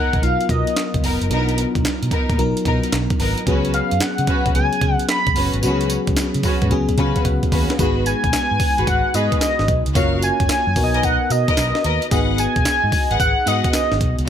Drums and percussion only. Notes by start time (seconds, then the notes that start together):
0.13 kick, closed hi-hat
0.23 closed hi-hat
0.41 closed hi-hat
0.49 kick, closed hi-hat
0.67 closed hi-hat
0.77 snare, clap, closed hi-hat
0.94 kick, closed hi-hat
1.04 open hi-hat
1.22 closed hi-hat
1.31 closed hi-hat
1.49 closed hi-hat
1.58 closed hi-hat
1.75 kick, closed hi-hat
1.85 snare, clap, closed hi-hat
2.03 closed hi-hat
2.11 kick, closed hi-hat
2.30 kick, closed hi-hat
2.39 closed hi-hat
2.57 closed hi-hat
2.65 kick, closed hi-hat
2.83 closed hi-hat
2.92 snare, clap, closed hi-hat
3.10 kick, closed hi-hat
3.20 open hi-hat
3.38 closed hi-hat
3.47 kick, closed hi-hat
3.65 closed hi-hat
3.74 closed hi-hat
3.91 closed hi-hat
4.00 snare, clap, closed hi-hat
4.18 closed hi-hat
4.27 kick, closed hi-hat
4.46 kick, closed hi-hat
4.55 closed hi-hat
4.73 closed hi-hat
4.81 kick, closed hi-hat
4.99 closed hi-hat
5.09 snare, clap, closed hi-hat
5.27 kick, closed hi-hat
5.36 open hi-hat
5.54 closed hi-hat
5.63 closed hi-hat, tambourine
5.81 closed hi-hat
5.90 closed hi-hat, tambourine
6.07 kick, closed hi-hat
6.16 snare, clap, closed hi-hat, tambourine
6.34 closed hi-hat
6.43 kick, open hi-hat, tambourine
6.62 kick, closed hi-hat
6.71 kick, closed hi-hat
6.89 kick, closed hi-hat
6.98 kick, closed hi-hat
7.16 kick, closed hi-hat
7.25 kick, closed hi-hat
7.43 kick, closed hi-hat
7.52 kick, open hi-hat
7.70 snare, closed hi-hat
7.79 kick, closed hi-hat, tambourine
8.06 closed hi-hat, tambourine
8.24 kick, closed hi-hat
8.33 snare, clap, closed hi-hat, tambourine
8.60 kick, open hi-hat, tambourine
8.78 closed hi-hat
8.87 kick, closed hi-hat, tambourine
9.14 closed hi-hat, tambourine
9.32 kick, closed hi-hat
9.41 snare, clap, closed hi-hat, tambourine
9.59 snare
9.68 kick, closed hi-hat
9.86 closed hi-hat
9.95 kick, closed hi-hat, tambourine
10.22 closed hi-hat, tambourine
10.40 kick, closed hi-hat
10.49 snare, clap, closed hi-hat, tambourine
10.76 kick, open hi-hat, tambourine
10.94 closed hi-hat
11.03 kick, closed hi-hat, tambourine
11.30 closed hi-hat, tambourine
11.48 kick, closed hi-hat
11.57 snare, clap, closed hi-hat, tambourine
11.75 snare
11.84 closed hi-hat
12.02 closed hi-hat
12.11 kick, closed hi-hat, tambourine
12.38 closed hi-hat, tambourine
12.56 kick, closed hi-hat
12.65 snare, clap, closed hi-hat, tambourine
12.92 kick, open hi-hat, tambourine
13.11 closed hi-hat
13.20 kick, closed hi-hat, tambourine
13.47 closed hi-hat, tambourine
13.64 kick, closed hi-hat
13.73 snare, clap, closed hi-hat, tambourine
13.92 snare
14.01 kick, closed hi-hat
14.19 closed hi-hat